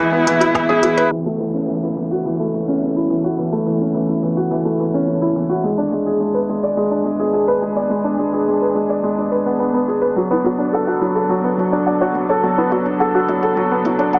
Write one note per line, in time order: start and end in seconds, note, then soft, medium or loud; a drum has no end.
0.00 0.36 E1 loud
0.00 1.12 B2 medium
0.00 0.27 E3 loud
0.00 1.12 G#3 medium
0.00 0.12 B3 loud
0.00 0.40 E4 medium
0.00 7.46 E4 medium
0.00 0.69 G#4 loud
0.00 1.11 G#4 medium
0.00 0.97 B4 loud
0.12 0.26 B3 medium
0.27 0.35 E3 medium
0.27 closed hi-hat medium
0.40 0.93 D1 medium
0.40 0.53 E4 loud
0.40 0.47 F#4 medium
0.40 closed hi-hat soft
0.55 0.68 E4 medium
0.55 0.64 B4 medium
0.55 kick loud
0.55 closed hi-hat soft
0.55 low woodblock medium
0.69 0.75 C#4 medium
0.69 0.83 G#4 loud
0.83 0.97 E3 medium
0.83 0.93 F#4 medium
0.83 closed hi-hat medium
0.97 1.11 B4 medium
0.97 1.11 C#5 medium
0.97 closed hi-hat soft
1.11 5.62 F#1 medium
1.11 5.65 C#3 medium
1.11 1.25 E3 medium
1.11 closed hi-hat soft
1.11 downlifter medium
1.24 5.64 F#3 medium
1.24 1.39 A3 medium
1.40 1.48 E3 medium
1.40 closed hi-hat medium
1.54 1.62 C#4 medium
1.68 1.76 E3 medium
1.81 1.96 E4 medium
1.81 5.64 A4 medium
1.97 2.05 E3 medium
1.97 closed hi-hat medium
2.11 2.24 F#4 medium
2.11 closed hi-hat soft
2.26 2.39 E3 medium
2.40 2.53 A3 medium
2.54 2.62 E3 medium
2.54 closed hi-hat medium
2.68 2.81 C#4 medium
2.68 closed hi-hat soft
2.82 2.96 C#4 medium
2.82 closed hi-hat soft
2.96 3.09 E4 medium
3.10 3.23 E3 medium
3.10 closed hi-hat medium
3.24 3.38 F#4 medium
3.24 closed hi-hat soft
3.38 3.52 E3 medium
3.38 closed hi-hat soft
3.52 3.66 A3 medium
3.66 3.75 E3 medium
3.66 closed hi-hat medium
3.81 3.89 C#4 medium
3.81 closed hi-hat soft
3.94 4.03 E3 medium
3.94 closed hi-hat soft
4.09 4.22 E4 medium
4.23 4.31 E3 medium
4.23 closed hi-hat medium
4.37 4.51 F#4 medium
4.37 closed hi-hat soft
4.51 4.65 E3 medium
4.51 closed hi-hat soft
4.65 4.79 A3 medium
4.80 4.88 E3 medium
4.80 closed hi-hat medium
4.94 5.06 C#4 medium
4.94 closed hi-hat soft
5.07 5.21 C#4 medium
5.07 closed hi-hat soft
5.22 5.35 E4 medium
5.36 5.50 E3 medium
5.36 closed hi-hat medium
5.49 5.63 F#4 medium
5.49 closed hi-hat soft
5.64 10.14 G#1 medium
5.64 14.19 B2 medium
5.64 5.78 G#3 medium
5.64 closed hi-hat soft
5.78 5.92 D4 medium
5.92 6.01 G#3 medium
5.92 14.19 D4 medium
5.92 closed hi-hat medium
6.00 10.18 G#3 medium
6.06 6.15 G#4 medium
6.06 closed hi-hat soft
6.20 6.29 G#3 medium
6.20 closed hi-hat soft
6.30 10.18 G#4 medium
6.30 6.48 B4 medium
6.49 6.57 G#3 medium
6.49 closed hi-hat medium
6.63 6.77 D5 medium
6.63 closed hi-hat soft
6.77 6.91 G#3 medium
6.77 closed hi-hat soft
6.91 7.05 D4 medium
7.05 7.14 G#3 medium
7.05 closed hi-hat medium
7.20 7.32 G#4 medium
7.20 closed hi-hat soft
7.33 7.47 G#4 medium
7.33 closed hi-hat soft
7.48 7.62 B4 medium
7.62 7.76 G#3 medium
7.62 closed hi-hat medium
7.76 7.90 D5 medium
7.76 closed hi-hat soft
7.90 8.04 G#3 medium
7.90 closed hi-hat soft
8.04 8.18 D4 medium
8.19 8.27 G#3 medium
8.19 closed hi-hat medium
8.33 8.41 G#4 medium
8.33 closed hi-hat soft
8.48 8.56 G#3 medium
8.48 closed hi-hat soft
8.62 8.75 B4 medium
8.75 8.84 G#3 medium
8.75 closed hi-hat medium
8.89 9.03 D5 medium
8.89 closed hi-hat soft
9.03 9.17 G#3 medium
9.03 closed hi-hat soft
9.18 9.32 D4 medium
9.31 9.45 B4 medium
9.31 closed hi-hat medium
9.46 9.55 B3 medium
9.46 closed hi-hat soft
9.60 9.72 B3 medium
9.60 closed hi-hat soft
9.74 9.88 B3 medium
9.88 9.97 G#4 medium
9.88 closed hi-hat medium
10.02 10.16 B4 medium
10.02 closed hi-hat soft
10.16 14.19 F#1 medium
10.16 10.30 F#3 medium
10.16 10.23 F#4 medium
10.16 closed hi-hat soft
10.31 10.45 B3 medium
10.31 10.42 E4 medium
10.38 14.19 F#3 medium
10.44 10.53 F#3 medium
10.44 10.59 F#4 medium
10.44 14.19 A4 medium
10.44 closed hi-hat medium
10.58 10.67 D4 medium
10.58 closed hi-hat soft
10.73 10.87 A4 medium
10.73 10.80 F#5 medium
10.73 closed hi-hat soft
10.87 11.01 F#4 medium
10.87 11.02 F#4 medium
11.01 11.10 F#3 medium
11.01 11.08 E4 medium
11.01 closed hi-hat medium
11.15 11.29 A4 medium
11.15 closed hi-hat soft
11.29 11.43 F#3 medium
11.29 closed hi-hat soft
11.44 11.58 B3 medium
11.58 11.66 F#3 medium
11.58 11.72 E4 medium
11.58 closed hi-hat medium
11.72 11.85 D4 medium
11.72 11.82 C#5 medium
11.72 closed hi-hat soft
11.87 12.01 D4 medium
11.87 11.93 F#5 medium
11.87 closed hi-hat soft
12.01 12.15 F#4 medium
12.01 12.07 C#5 medium
12.15 12.29 F#3 medium
12.15 closed hi-hat medium
12.29 12.43 A4 medium
12.29 12.39 C#5 medium
12.29 closed hi-hat soft
12.44 12.57 F#3 medium
12.44 12.49 F#4 medium
12.44 closed hi-hat soft
12.58 12.71 B3 medium
12.58 12.67 E4 medium
12.72 12.80 F#3 medium
12.72 12.86 F#4 medium
12.72 closed hi-hat medium
12.86 12.94 D4 medium
12.86 closed hi-hat soft
13.00 13.14 A4 medium
13.00 13.06 F#5 medium
13.00 closed hi-hat soft
13.14 13.28 F#4 medium
13.28 13.37 F#3 medium
13.28 13.35 E4 medium
13.28 closed hi-hat medium
13.43 13.57 A4 medium
13.43 closed hi-hat soft
13.57 13.70 F#3 medium
13.57 closed hi-hat soft
13.71 13.85 B3 medium
13.85 13.93 F#3 medium
13.85 13.99 E4 medium
13.85 closed hi-hat medium
13.99 14.12 D4 medium
13.99 14.09 C#5 medium
13.99 closed hi-hat soft
14.13 14.19 D4 medium
14.13 14.19 F#5 medium
14.13 closed hi-hat soft